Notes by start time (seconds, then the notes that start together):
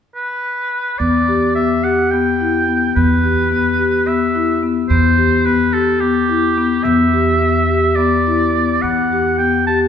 0.15 B4
0.98 E2 B3 D5
1.28 G4
1.55 B3 E5
1.84 G4 F#5
2.11 B3 G5
2.41 E4
2.68 B3
2.96 E2 B3 B4
3.24 G4
3.52 B3
3.79 G4
4.07 B3 E5
4.35 E4
4.63 B3
4.89 E2 B3 C5
5.18 G4
5.45 B3 B4
5.73 G4 A4
6.00 B3 G4
6.29 E4
6.57 B3
6.84 E2 B3 E5
7.14 G4
7.42 B3
7.70 G4
7.96 B3 D5
8.27 E4
8.55 B3
8.82 E2 B3 F#5
9.12 G4
9.38 B3 G5
9.67 G4 A5